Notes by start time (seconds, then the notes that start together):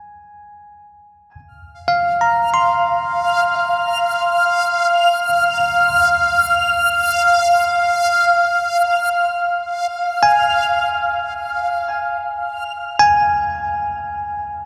Already playing: G#5
1.34 F5 F6
1.88 F5
2.21 A#5
2.54 C6
10.23 G#5
12.99 G#5